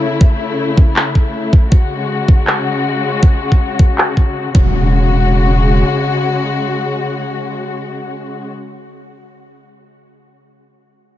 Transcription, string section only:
Already playing: C#3 A3 E4
1.72 C#3 G#3 F#4
4.55 C#3 G#3 F#4

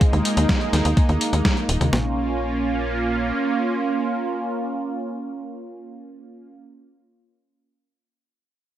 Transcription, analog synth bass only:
0.13 D#2
0.37 D#2
0.73 D#2
0.85 D#2
1.09 D#2
1.33 D#2
1.69 D#1
1.81 D#2
1.93 A#1

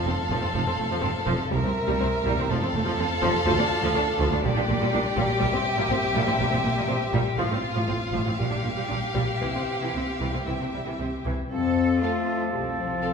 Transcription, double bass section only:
0.06 F1
0.31 F1
0.55 F1
0.79 F1
1.03 F1
1.27 F1
1.52 C2
2.01 C2
2.25 C2
2.50 F1
2.75 F1
2.99 F1
3.23 F1
3.47 D2
3.95 D2
4.20 D2
4.45 A#1
4.68 A#1
4.93 A#1
5.17 A#1
5.42 A#1
5.90 A#1
6.15 A#1
6.39 A#1
6.64 A#1
6.89 A#1
7.13 A#1
7.38 A1
7.89 A1
8.14 A1
8.39 A#1
8.64 A#1
8.90 A#1
9.16 A#1
9.42 C2
9.95 C2
10.21 C2
10.47 C2
10.74 C2
10.99 C2
11.26 C2
11.52 F2
12.53 C2

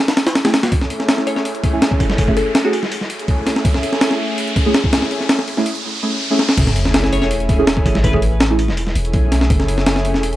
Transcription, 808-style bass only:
Already playing: E1
0.17 E1
0.35 B1
0.72 F#1
1.37 E1
2.00 A1
2.83 E1
3.28 F#1
3.47 E1
3.65 F#1
4.29 E1
4.93 A1
5.75 E1
6.58 F#1
7.22 E1
7.86 A1
8.68 E1
8.95 E1
9.14 B1
9.50 F#1
10.15 E1

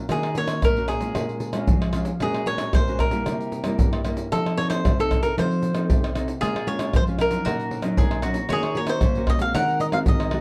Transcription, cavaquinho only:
0.12 G#4
0.38 C#5
0.64 A#4
0.88 G#4
2.22 G#4
2.47 C#5
2.75 C5
3.00 A#4
4.32 A4
4.58 C#5
4.70 C5
5.00 A4
5.23 A#4
5.39 C5
6.41 G#4
6.68 C#5
6.96 C5
7.21 A#4
8.53 G#4
8.77 C#5
8.89 C5
9.30 D#5
9.42 F5
9.55 F#5
9.81 D#5
9.93 F5
10.08 D#5

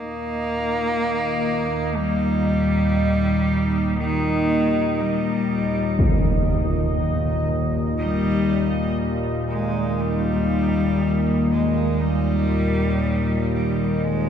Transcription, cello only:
Already playing: A#3
1.97 G3
4.00 D#3
5.00 G3
7.98 G3
9.49 G#3
10.01 G3
11.53 G#3
12.02 G3
13.54 G3
14.05 G#3

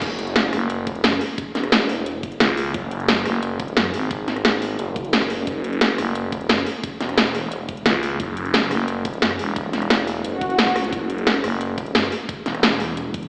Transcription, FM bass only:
0.53 F#1
2.40 C#2
3.26 F#1
3.94 G#1
5.98 F#1
7.86 C#2
8.71 F#1
9.39 E1
9.73 E1
11.44 F#1

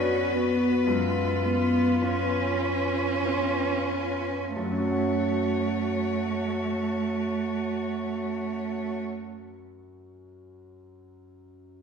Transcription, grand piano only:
Already playing: B3 F#4 D5
0.88 F#2
2.01 B3 F4 C#5
3.25 B3 F4 C#5
4.56 F#2
4.63 F#3
4.70 C#4
4.78 F#4
4.84 C#5
4.91 F#5

